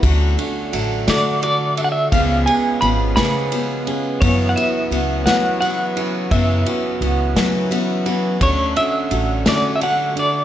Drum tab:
RD |xxxxxx|xxxxxx|xxxxxx|xxxxxx|
SD |---o--|---o--|---o--|---o--|
BD |o-----|o--o--|o-----|o-----|

RD |xxxxxx|
SD |---o--|
BD |o-----|